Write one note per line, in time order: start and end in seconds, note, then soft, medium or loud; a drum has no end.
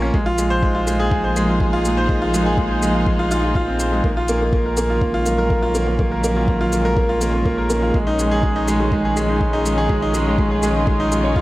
0.00 0.11 A#1 medium
0.00 0.14 D#3 medium
0.00 0.14 G#3 medium
0.00 0.16 A#3 loud
0.00 0.02 C#4 loud
0.00 0.14 C#4 medium
0.00 0.16 F4 loud
0.00 1.34 F4 medium
0.00 0.16 A#4 loud
0.13 4.02 A#1 medium
0.13 4.04 F3 medium
0.13 0.26 G#3 medium
0.13 kick loud
0.26 0.38 F4 loud
0.38 0.45 G#3 medium
0.38 4.68 A#3 medium
0.38 shaker medium
0.50 0.62 C5 loud
0.55 5.60 D#4 medium
0.55 5.60 G#4 medium
0.63 0.70 G#3 medium
0.63 kick loud
0.75 0.82 F4 medium
0.87 0.99 G#3 loud
0.87 shaker medium
1.00 1.11 G#4 loud
1.11 1.23 G#3 medium
1.11 kick loud
1.24 1.31 C5 medium
1.36 1.48 G#3 loud
1.36 shaker medium
1.49 1.60 F4 medium
1.60 1.72 G#3 medium
1.60 kick loud
1.73 1.84 F4 loud
1.85 1.92 G#3 medium
1.85 shaker medium
1.97 2.09 C5 loud
2.09 2.16 G#3 medium
2.09 kick loud
2.22 2.29 F4 loud
2.34 2.45 G#3 medium
2.34 shaker medium
2.46 2.58 G#4 loud
2.58 2.70 G#3 medium
2.58 kick loud
2.71 2.77 C5 medium
2.83 2.94 G#3 medium
2.83 shaker medium
2.94 3.06 F4 medium
3.06 3.19 G#3 medium
3.06 kick loud
3.19 3.30 F4 loud
3.31 3.42 F4 loud
3.31 shaker medium
3.44 3.50 F4 medium
3.55 3.67 F4 medium
3.55 kick loud
3.67 3.75 C4 medium
3.80 3.91 C5 medium
3.80 shaker medium
3.92 4.04 G#3 medium
4.04 7.92 A#1 medium
4.04 11.41 D#3 medium
4.04 4.11 A#3 medium
4.04 kick loud
4.17 4.24 F4 medium
4.28 4.40 A#3 loud
4.28 shaker medium
4.35 11.41 G#3 medium
4.41 4.48 A#3 medium
4.53 4.65 A#3 medium
4.53 kick loud
4.66 4.72 A#4 medium
4.77 4.89 A#3 loud
4.77 shaker medium
4.90 11.41 C#4 medium
4.90 5.01 F4 medium
5.01 5.13 A#3 medium
5.01 kick loud
5.14 5.26 F4 loud
5.24 7.94 F#3 loud
5.24 5.33 A#3 medium
5.24 shaker medium
5.38 5.50 A#4 medium
5.50 5.57 A#3 medium
5.50 kick loud
5.63 5.70 F4 loud
5.75 5.86 A#3 loud
5.75 shaker medium
5.87 5.94 A#3 medium
5.99 6.11 A#3 medium
5.99 kick loud
6.12 6.19 A#4 medium
6.24 6.36 A#3 loud
6.24 shaker medium
6.36 6.48 F4 medium
6.48 6.60 A#3 medium
6.48 kick loud
6.61 6.72 F4 loud
6.72 6.80 A#3 medium
6.72 shaker medium
6.85 6.96 A#4 loud
6.97 7.04 A#3 medium
6.97 kick loud
7.09 7.16 F4 loud
7.21 7.32 A#3 loud
7.21 shaker medium
7.34 7.41 A#3 medium
7.45 7.57 A#3 medium
7.45 kick medium
7.58 7.65 A#4 medium
7.70 7.82 A#3 loud
7.70 shaker medium
7.83 7.94 F4 medium
7.94 11.41 A#1 medium
7.94 8.06 G#3 medium
7.94 kick loud
8.07 8.18 D#4 loud
8.19 8.26 G#3 medium
8.19 shaker medium
8.31 8.43 G#4 loud
8.43 8.50 G#3 medium
8.43 kick loud
8.56 8.63 D#4 loud
8.68 8.79 G#3 loud
8.68 11.41 F4 medium
8.68 shaker medium
8.80 8.87 G#3 medium
8.92 9.04 G#3 medium
8.92 kick medium
9.05 9.12 G#4 medium
9.17 9.28 G#3 loud
9.17 shaker medium
9.29 9.41 D#4 medium
9.41 9.53 G#3 medium
9.41 kick medium
9.53 9.65 D#4 loud
9.66 9.72 G#3 medium
9.66 shaker medium
9.78 9.89 G#4 loud
9.89 9.97 G#3 medium
9.89 kick loud
10.02 10.09 D#4 loud
10.14 10.25 G#3 medium
10.14 shaker medium
10.27 10.33 G#3 medium
10.38 10.50 G#3 medium
10.38 kick loud
10.51 10.58 G#4 medium
10.63 10.75 G#3 loud
10.63 shaker medium
10.76 10.87 D#4 medium
10.87 10.99 G#3 medium
10.87 kick loud
11.00 11.11 D#4 loud
11.12 11.23 G#3 medium
11.12 shaker medium
11.24 11.31 C#5 medium
11.36 11.41 F4 loud
11.36 kick loud